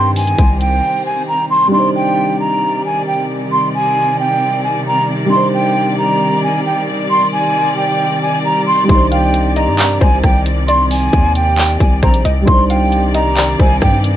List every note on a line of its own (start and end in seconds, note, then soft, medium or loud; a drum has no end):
0.00 0.35 G2 loud
0.00 1.69 C3 medium
0.00 1.69 D#3 medium
0.00 1.66 G3 medium
0.00 1.69 G3 medium
0.00 1.71 C4 medium
0.00 1.68 D4 medium
0.00 1.70 D#4 medium
0.00 1.71 C5 medium
0.00 1.24 G5 loud
0.00 0.11 C6 medium
0.16 0.58 G#5 medium
0.16 closed hi-hat soft
0.16 open hi-hat medium
0.27 closed hi-hat medium
0.38 0.82 C2 loud
0.38 kick loud
0.38 closed hi-hat medium
0.61 1.03 G5 medium
0.61 closed hi-hat medium
1.06 1.23 G#5 medium
1.28 1.45 A#5 medium
1.50 1.67 C6 medium
1.68 5.24 G3 medium
1.68 5.26 D4 medium
1.73 8.85 C3 medium
1.73 12.44 D#3 medium
1.73 12.44 G3 medium
1.73 5.28 D#4 medium
1.73 12.44 D5 medium
1.73 1.90 C6 medium
1.79 5.30 C5 medium
1.95 2.37 G5 medium
2.40 2.82 A#5 medium
2.85 3.02 G#5 medium
3.07 3.24 G5 medium
3.52 3.69 C6 medium
3.74 4.17 G#5 medium
4.19 4.61 G5 medium
4.64 4.81 G#5 medium
4.86 5.03 A#5 medium
5.25 8.82 G3 medium
5.25 8.84 D4 medium
5.31 8.86 D#4 medium
5.31 5.48 C6 loud
5.36 8.88 C5 medium
5.54 5.96 G5 medium
5.98 6.40 A#5 medium
6.43 6.60 G#5 medium
6.65 6.83 G5 medium
7.10 7.27 C6 medium
7.33 7.75 G#5 medium
7.77 8.19 G5 medium
8.22 8.39 G#5 medium
8.45 8.62 A#5 medium
8.67 8.84 C6 medium
8.84 12.40 G3 medium
8.84 12.43 D4 medium
8.89 9.69 C2 loud
8.89 12.44 C3 medium
8.89 12.45 D#4 medium
8.89 9.06 C6 medium
8.89 kick loud
8.89 closed hi-hat medium
8.95 12.46 C5 medium
9.11 9.54 F5 medium
9.11 9.54 G5 medium
9.11 closed hi-hat medium
9.34 closed hi-hat medium
9.56 9.78 D#5 medium
9.56 9.98 A#5 medium
9.56 closed hi-hat medium
9.68 10.00 G2 loud
9.79 10.00 D5 loud
9.79 clap loud
9.79 closed hi-hat medium
10.01 10.23 C2 loud
10.01 10.64 C5 medium
10.01 10.19 G#5 medium
10.01 kick medium
10.24 11.10 C2 loud
10.24 10.41 G5 medium
10.24 kick medium
10.24 cross-stick medium
10.24 closed hi-hat medium
10.46 closed hi-hat medium
10.68 11.99 D5 loud
10.68 10.85 C6 medium
10.68 closed hi-hat medium
10.91 11.33 G#5 medium
10.91 open hi-hat medium
11.13 11.78 D#2 loud
11.13 kick loud
11.13 closed hi-hat medium
11.35 11.78 G5 medium
11.35 closed hi-hat medium
11.58 clap loud
11.80 12.02 C2 loud
11.80 11.97 G#5 medium
11.80 kick medium
11.80 closed hi-hat medium
12.03 12.24 A#1 loud
12.03 12.24 C5 medium
12.03 12.20 A#5 medium
12.03 kick medium
12.03 cross-stick medium
12.03 closed hi-hat soft
12.14 closed hi-hat medium
12.25 12.47 C2 loud
12.25 12.46 D#5 loud
12.25 closed hi-hat medium
12.42 14.17 G3 medium
12.42 14.17 D4 medium
12.47 13.55 C2 loud
12.47 14.17 C3 medium
12.47 14.17 D#3 medium
12.47 14.17 G3 medium
12.47 14.17 D#4 medium
12.47 14.17 D5 medium
12.47 12.64 C6 medium
12.47 kick loud
12.47 closed hi-hat medium
12.52 14.17 C5 medium
12.70 13.12 F5 medium
12.70 13.12 G5 medium
12.70 closed hi-hat medium
12.92 closed hi-hat medium
13.15 13.36 D#5 medium
13.15 13.57 A#5 medium
13.15 closed hi-hat medium
13.37 13.58 D5 medium
13.37 clap loud
13.37 closed hi-hat medium
13.59 13.81 C2 loud
13.59 14.17 C5 medium
13.59 13.77 G#5 medium
13.59 kick loud
13.82 14.17 G2 loud
13.82 13.99 G5 medium
13.82 kick medium
13.82 cross-stick medium
13.82 closed hi-hat medium
14.04 closed hi-hat medium